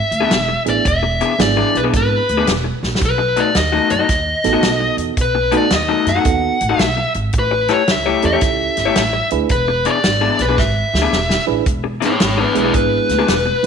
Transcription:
Already playing: lead electric guitar E5
0.11 upright bass D2, closed hi-hat
0.20 clean electric guitar E3 B3 D4 G#4
0.30 upright bass E1, snare, closed hi-hat
0.48 muted clean electric guitar stroke
0.65 upright bass A1, reed electric piano B3 D4 E4 G#4, closed hi-hat
0.69 lead electric guitar D5
0.85 upright bass E1, lead electric guitar E5, kick, closed hi-hat
1.03 muted clean electric guitar stroke
1.21 clean electric guitar E3 B3 D4 G#4, closed hi-hat
1.39 upright bass G#1, reed electric piano B3 D4 E4 G#4, lead electric guitar D5, muted clean electric guitar stroke, snare, closed hi-hat
1.57 clean electric guitar E3 B3 D4 G#4
1.75 upright bass B1, lead electric guitar B4, closed hi-hat
1.84 clean electric guitar E3 B3 D4 G#4
1.93 upright bass G#1, lead electric guitar B4, muted clean electric guitar stroke, kick, snare, closed hi-hat
2.29 upright bass D2, closed hi-hat
2.37 clean electric guitar E3 B3 D4 G#4
2.47 upright bass E1, snare, closed hi-hat
2.64 muted clean electric guitar stroke
2.83 upright bass A#1, snare
2.95 snare
3.01 upright bass B1, kick, closed hi-hat
3.05 lead electric guitar B4
3.18 muted clean electric guitar stroke
3.36 clean electric guitar B2 A3 D#4 F#4, lead electric guitar D5, closed hi-hat
3.55 upright bass D#2, lead electric guitar D#5, muted clean electric guitar stroke, snare, closed hi-hat
3.72 clean electric guitar B2 A3 D#4 F#4
3.90 upright bass F#2, lead electric guitar D#5, closed hi-hat
3.99 clean electric guitar B2 A3 D#4 F#4
4.08 upright bass D#2, muted clean electric guitar stroke, kick, snare, closed hi-hat
4.44 upright bass A1, reed electric piano B3 D#4 F#4 A4, snare, closed hi-hat
4.53 clean electric guitar B2 A3 D#4 F#4
4.62 upright bass B1, snare, closed hi-hat
4.80 muted clean electric guitar stroke
4.97 upright bass E2, closed hi-hat
5.17 upright bass B1, kick, closed hi-hat
5.21 lead electric guitar B4
5.35 muted clean electric guitar stroke
5.52 clean electric guitar B2 A3 D#4 F#4, reed electric piano B3 D#4 F#4 A4, closed hi-hat
5.57 lead electric guitar D5
5.70 upright bass D#2, lead electric guitar D#5, muted clean electric guitar stroke, snare, closed hi-hat
5.88 clean electric guitar B2 A3 D#4 F#4
6.06 upright bass F#2, lead electric guitar F#5, snare, closed hi-hat
6.15 clean electric guitar B2 A3 D#4 F#4
6.24 upright bass D#2, reed electric piano B3 D#4 F#4 A4, muted clean electric guitar stroke, kick, closed hi-hat
6.61 upright bass A1, closed hi-hat
6.69 clean electric guitar B2 A3 D#4 F#4
6.79 upright bass B1, lead electric guitar E5, snare, closed hi-hat
6.97 muted clean electric guitar stroke
7.14 upright bass G#1, closed hi-hat
7.33 upright bass A1, kick, closed hi-hat
7.39 lead electric guitar B4
7.51 muted clean electric guitar stroke
7.68 clean electric guitar A3 E4 G4 C#5, snare, closed hi-hat
7.74 lead electric guitar C#5
7.88 upright bass C#2, lead electric guitar E5, muted clean electric guitar stroke, snare, closed hi-hat
8.06 clean electric guitar A3 E4 G4 C#5
8.22 upright bass E2, reed electric piano C#4 E4 G4 A4, lead electric guitar E5, closed hi-hat
8.33 clean electric guitar A3 E4 G4 C#5
8.41 upright bass C#2, muted clean electric guitar stroke, kick, snare, closed hi-hat
8.77 upright bass G1, snare, closed hi-hat
8.85 clean electric guitar A3 E4 G4 C#5
8.96 upright bass A1, snare, closed hi-hat
9.13 muted clean electric guitar stroke
9.30 upright bass D2, reed electric piano D4 E4 G#4 B4, closed hi-hat
9.49 upright bass E1, lead electric guitar B4, kick, closed hi-hat
9.68 muted clean electric guitar stroke
9.85 clean electric guitar E3 B3 D4 G#4, lead electric guitar C#5 D5, closed hi-hat
10.04 upright bass G#1, muted clean electric guitar stroke, snare, closed hi-hat
10.21 clean electric guitar E3 B3 D4 G#4
10.39 upright bass B1, lead electric guitar B4, snare, closed hi-hat
10.48 clean electric guitar E3 B3 D4 G#4
10.58 upright bass G#1, lead electric guitar E5, muted clean electric guitar stroke, kick, snare
10.93 upright bass D2, snare
11.02 clean electric guitar E3 B3 D4 G#4
11.12 upright bass E1, snare
11.29 muted clean electric guitar stroke, snare
11.47 upright bass A1, reed electric piano D4 E4 G#4 B4
11.66 upright bass E1, kick, closed hi-hat
11.84 muted clean electric guitar stroke
12.01 clean electric guitar E3 B3 D4 G#4, snare, closed hi-hat
12.05 lead electric guitar E4 C#5
12.19 upright bass G#1, lead electric guitar E4 C#5, muted clean electric guitar stroke, snare, closed hi-hat
12.38 clean electric guitar E3 B3 D4 G#4, lead electric guitar G#4 B4
12.55 upright bass B1, reed electric piano G#3 B3 D4 E4 G#4, lead electric guitar G#4 B4, closed hi-hat
12.64 clean electric guitar E3 B3 D4 G#4
12.74 upright bass G#1, lead electric guitar B4, muted clean electric guitar stroke, kick, closed hi-hat
13.09 upright bass D2, snare, closed hi-hat
13.19 clean electric guitar E3 B3 D4 G#4
13.28 upright bass E1, snare, closed hi-hat
13.46 muted clean electric guitar stroke
13.63 reed electric piano G#3 B3 D4 E4

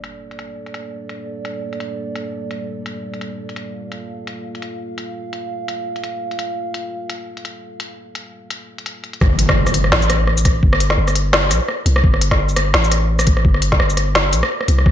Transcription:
Already playing: analog synth pad G3 A#3 A4 D5
0.04 closed hi-hat
0.31 closed hi-hat
0.39 closed hi-hat
0.66 closed hi-hat
0.74 closed hi-hat
1.09 closed hi-hat
1.45 closed hi-hat
1.73 closed hi-hat
1.80 closed hi-hat
2.16 closed hi-hat
2.51 closed hi-hat
2.86 closed hi-hat
3.14 closed hi-hat
3.21 closed hi-hat
3.49 closed hi-hat
3.56 analog synth pad F5, closed hi-hat
3.92 closed hi-hat
4.27 closed hi-hat
4.55 closed hi-hat
4.62 closed hi-hat
4.98 closed hi-hat
5.33 closed hi-hat
5.68 closed hi-hat
5.96 closed hi-hat
6.04 closed hi-hat
6.31 closed hi-hat
6.39 closed hi-hat
6.74 closed hi-hat
7.10 closed hi-hat
7.37 closed hi-hat
7.45 closed hi-hat
7.80 closed hi-hat
8.15 closed hi-hat
8.50 closed hi-hat
8.78 closed hi-hat
8.86 closed hi-hat
9.04 closed hi-hat
9.13 closed hi-hat
9.21 808-style bass G1, kick, cross-stick, impact
9.39 closed hi-hat
9.49 kick, cross-stick, snare
9.67 cross-stick, shaker
9.74 closed hi-hat
9.84 cross-stick
9.92 808-style bass A1, snare
10.02 shaker
10.10 cross-stick, closed hi-hat
10.27 cross-stick
10.37 shaker
10.45 kick, cross-stick, closed hi-hat
10.63 808-style bass G1, kick
10.73 cross-stick
10.80 closed hi-hat
10.90 cross-stick, snare
10.98 808-style bass G1
11.08 cross-stick, shaker
11.15 closed hi-hat
11.33 cross-stick, snare
11.51 808-style bass A#1, cross-stick, closed hi-hat, shaker
11.68 cross-stick
11.86 808-style bass C2, closed hi-hat
11.96 cross-stick
12.04 808-style bass G1, kick
12.14 cross-stick
12.21 closed hi-hat
12.31 kick, cross-stick, snare
12.49 shaker
12.56 cross-stick, closed hi-hat
12.74 808-style bass A1, cross-stick, snare
12.84 shaker
12.92 cross-stick, closed hi-hat
13.19 cross-stick, shaker
13.27 kick, closed hi-hat
13.37 cross-stick
13.45 808-style bass G1, kick
13.54 cross-stick
13.62 closed hi-hat
13.72 kick, snare
13.80 808-style bass G1, cross-stick
13.90 shaker
13.97 cross-stick, closed hi-hat
14.15 cross-stick, snare
14.33 808-style bass A#1, closed hi-hat, shaker
14.43 cross-stick
14.61 cross-stick
14.68 808-style bass C2, closed hi-hat
14.78 cross-stick
14.86 808-style bass G1, kick, cross-stick

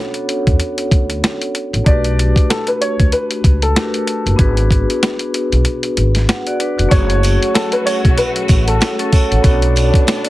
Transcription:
Already playing: vibraphone B3 D4 F#4 A4 C#5
0.14 closed hi-hat
0.29 closed hi-hat
0.47 upright bass E2, kick, closed hi-hat
0.60 closed hi-hat
0.78 closed hi-hat
0.91 upright bass D2, kick, closed hi-hat
1.10 closed hi-hat
1.24 snare, closed hi-hat
1.42 closed hi-hat
1.55 closed hi-hat
1.73 upright bass A1, closed hi-hat
1.84 upright bass B1, vibraphone A3 D4 F#4 G4, upright piano D5, kick, closed hi-hat
1.89 vibraphone B4
2.04 closed hi-hat
2.19 closed hi-hat
2.36 kick, closed hi-hat
2.50 upright piano A4, snare, closed hi-hat
2.67 upright piano B4, closed hi-hat
2.81 upright piano C#5, closed hi-hat
3.00 upright bass D2, kick, closed hi-hat
3.12 upright piano B4, closed hi-hat
3.31 closed hi-hat
3.44 upright bass C#2, kick, closed hi-hat
3.62 upright piano A4, closed hi-hat
3.75 vibraphone A3 D4 F#4 G4 A#4, snare, closed hi-hat
3.84 vibraphone B4
3.94 closed hi-hat
4.07 closed hi-hat
4.26 upright bass F#1, closed hi-hat
4.36 upright bass G#1, vibraphone B3 D4 F#4 G#4, kick, closed hi-hat
4.41 vibraphone B4
4.57 closed hi-hat
4.71 kick, closed hi-hat
4.90 closed hi-hat
5.03 snare, closed hi-hat
5.19 closed hi-hat
5.34 closed hi-hat
5.52 upright bass B1, closed hi-hat
5.65 closed hi-hat
5.83 closed hi-hat
5.97 upright bass G#1, closed hi-hat
6.15 snare, closed hi-hat
6.29 vibraphone F#5, snare, closed hi-hat
6.47 vibraphone F#4 D5, closed hi-hat
6.60 vibraphone D4 B4, closed hi-hat
6.78 upright bass F1, vibraphone F#4, closed hi-hat
6.88 upright bass F#1, string section F#3 A3 F#4, vibraphone A3 C#4 F#4 G#4, upright piano C#5, kick, closed hi-hat, sleigh bells
6.93 vibraphone C#5
7.10 closed hi-hat
7.23 closed hi-hat, sleigh bells
7.43 closed hi-hat
7.54 upright piano A4, snare, closed hi-hat, sleigh bells
7.72 upright piano B4, closed hi-hat
7.86 upright piano C#5, closed hi-hat, sleigh bells
8.05 upright bass B1, kick, closed hi-hat
8.18 upright piano B4, closed hi-hat, sleigh bells
8.36 closed hi-hat
8.48 upright bass A1, kick, closed hi-hat, sleigh bells
8.68 upright piano A4, closed hi-hat
8.81 snare, closed hi-hat, sleigh bells
8.99 vibraphone C#4 A4, closed hi-hat
9.12 vibraphone C#5, kick, closed hi-hat, sleigh bells
9.31 upright bass A1, vibraphone A4 F#5, closed hi-hat
9.42 upright bass B1, string section A3 B3 D4, vibraphone B3 C#4 F#4 A4, kick, closed hi-hat, sleigh bells
9.47 vibraphone D4 C#5
9.62 closed hi-hat
9.76 closed hi-hat, sleigh bells
9.94 kick, closed hi-hat
10.07 snare, closed hi-hat, sleigh bells
10.25 closed hi-hat

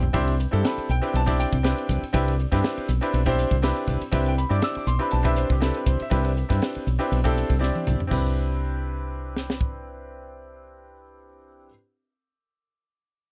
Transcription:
Already playing: fretless electric bass B1, grand piano G5
0.03 floor tom
0.13 fretless electric bass C2, grand piano C4 D4 E4 G4 C5, kick, ride
0.28 ride
0.38 grand piano G4 B4, hi-hat pedal
0.51 fretless electric bass G2, grand piano C4 D4 E4 G4 A4, ride
0.65 grand piano B5, snare, ride
0.77 muted fretless electric bass stroke, ride
0.89 fretless electric bass B1, grand piano G5, hi-hat pedal
1.02 grand piano C4 D4 E4 G4 B4, ride
1.14 fretless electric bass B1, grand piano A5, ride
1.26 grand piano C4 D4 E4 G4 D5, kick, ride
1.40 grand piano G5, hi-hat pedal
1.53 fretless electric bass C2, kick, ride
1.63 grand piano C4 D4 E4 G4 B4, snare, ride
1.78 ride
1.89 fretless electric bass C2, kick, hi-hat pedal
2.02 muted fretless electric bass stroke, ride
2.13 fretless electric bass C2, grand piano C4 D4 E4 G4 B4, kick, ride
2.28 ride
2.38 grand piano G4 D5, hi-hat pedal
2.52 fretless electric bass G2, grand piano C4 D4 E4 G4 B4, kick, snare, ride
2.64 snare, ride
2.77 muted fretless electric bass stroke, ride
2.88 fretless electric bass B1, hi-hat pedal
3.01 grand piano C4 D4 E4 G4 B4, ride
3.13 fretless electric bass B1, ride
3.26 grand piano C4 D4 E4 G4 C5, kick, ride
3.38 hi-hat pedal
3.51 fretless electric bass C2, kick, ride
3.62 grand piano C4 D4 E4 G4 B4, snare, ride
3.76 ride
3.87 fretless electric bass C2, kick, hi-hat pedal
4.01 ride
4.12 fretless electric bass C2, grand piano C4 D4 E4 G4 B4 E5, kick, ride
4.26 grand piano G5, ride
4.37 grand piano G4 B4 B5, hi-hat pedal
4.49 fretless electric bass G2, grand piano C4 D4 E4 G4 D5 D6, ride
4.62 grand piano E6, snare, ride
4.75 grand piano D6, muted fretless electric bass stroke, ride
4.87 fretless electric bass B1, grand piano C6, hi-hat pedal
4.99 grand piano C4 D4 E4 G4 B4 B5, ride
5.11 fretless electric bass B1, grand piano A5, ride
5.23 grand piano C4 D4 E4 G4 B4 E5, kick, ride
5.36 grand piano C5, hi-hat pedal
5.50 fretless electric bass C2, grand piano G4, kick, ride
5.61 grand piano C4 D4 E4 G4 A4 B4, snare, ride
5.74 grand piano B4, ride
5.86 fretless electric bass C2, grand piano C5, kick, hi-hat pedal
6.00 grand piano E5, ride
6.10 fretless electric bass C2, grand piano C4 D4 E4 G4 B4, kick, ride
6.25 ride
6.36 grand piano G4 B4, hi-hat pedal
6.49 fretless electric bass G2, grand piano C4 D4 E4 G4 B4, kick, snare, ride
6.62 snare, ride
6.75 muted fretless electric bass stroke, ride
6.86 fretless electric bass B1, hi-hat pedal
6.99 grand piano C4 D4 E4 G4 B4, ride
7.11 fretless electric bass B1, ride
7.24 grand piano C4 D4 E4 G4 A4, kick, ride
7.37 hi-hat pedal
7.50 fretless electric bass C2, kick, ride
7.59 grand piano C4 D4 E4 G4 D5, snare
7.75 high tom
7.87 fretless electric bass C2, hi-hat pedal, mid tom
8.00 floor tom
8.07 grand piano C4 D4 E4, kick
8.11 fretless electric bass C2, grand piano G4 B4, crash
9.36 snare
9.50 snare
9.61 kick

